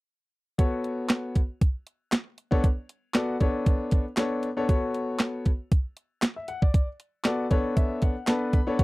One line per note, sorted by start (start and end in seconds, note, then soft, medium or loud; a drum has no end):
0.58 1.37 B3 medium
0.58 1.37 F#4 medium
0.58 1.37 A4 medium
0.58 1.38 C#5 medium
0.58 kick loud
0.58 closed hi-hat medium
0.84 closed hi-hat medium
1.09 snare loud
1.09 clap medium
1.09 closed hi-hat medium
1.35 kick medium
1.35 closed hi-hat medium
1.61 kick loud
1.61 closed hi-hat medium
1.87 closed hi-hat medium
2.12 snare loud
2.12 clap medium
2.12 closed hi-hat medium
2.38 closed hi-hat medium
2.51 2.63 B3 loud
2.51 2.64 D4 medium
2.51 2.64 A4 medium
2.51 2.64 C#5 loud
2.51 kick loud
2.64 kick loud
2.64 closed hi-hat medium
2.89 closed hi-hat medium
3.14 3.35 B3 medium
3.14 3.35 F#4 medium
3.14 3.35 A4 medium
3.14 3.35 D5 medium
3.14 snare loud
3.14 clap medium
3.14 closed hi-hat medium
3.40 4.03 B3 medium
3.40 4.03 D4 medium
3.40 4.03 A4 medium
3.40 4.03 C#5 medium
3.40 kick medium
3.40 closed hi-hat soft
3.66 kick loud
3.66 closed hi-hat medium
3.91 kick medium
3.91 closed hi-hat medium
4.17 4.47 B3 medium
4.17 4.47 D4 medium
4.17 4.47 A4 medium
4.17 4.48 C#5 loud
4.17 snare loud
4.17 clap medium
4.17 closed hi-hat medium
4.43 closed hi-hat medium
4.57 4.66 B3 medium
4.57 4.66 D4 medium
4.57 4.66 A4 medium
4.57 4.66 C#5 loud
4.69 5.47 B3 medium
4.69 5.48 F#4 medium
4.69 5.48 A4 medium
4.69 5.48 C#5 medium
4.69 kick loud
4.69 closed hi-hat medium
4.94 closed hi-hat medium
5.19 snare loud
5.19 clap medium
5.19 closed hi-hat medium
5.46 kick medium
5.46 closed hi-hat medium
5.72 kick loud
5.72 closed hi-hat medium
5.97 closed hi-hat medium
6.22 snare loud
6.22 clap loud
6.22 closed hi-hat medium
6.36 6.48 E5 medium
6.48 6.61 F#5 medium
6.48 closed hi-hat medium
6.62 6.86 D5 medium
6.62 kick medium
6.74 kick loud
6.74 closed hi-hat medium
7.00 closed hi-hat medium
7.24 7.45 B3 medium
7.24 7.45 F#4 medium
7.24 7.45 A4 medium
7.24 7.45 D5 medium
7.24 snare loud
7.24 clap medium
7.24 closed hi-hat medium
7.50 8.13 B3 medium
7.50 8.13 D4 medium
7.50 8.13 A4 medium
7.50 8.13 C#5 medium
7.50 7.75 F#5 medium
7.50 kick medium
7.50 closed hi-hat medium
7.76 8.00 E5 medium
7.76 kick loud
7.76 closed hi-hat medium
8.02 8.26 F#5 medium
8.02 kick medium
8.02 closed hi-hat medium
8.27 8.57 B3 medium
8.27 8.57 D4 medium
8.27 8.58 A4 medium
8.27 8.58 B4 medium
8.27 8.52 A5 medium
8.27 snare loud
8.27 clap medium
8.27 closed hi-hat medium
8.53 8.77 B5 medium
8.53 kick medium
8.53 closed hi-hat medium
8.67 8.76 B3 medium
8.67 8.76 D4 medium
8.67 8.76 A4 medium
8.67 8.77 C#5 medium
8.78 8.84 B3 medium
8.78 8.84 F#4 medium
8.78 8.84 A4 medium
8.78 8.84 C#5 medium
8.78 kick loud
8.78 closed hi-hat medium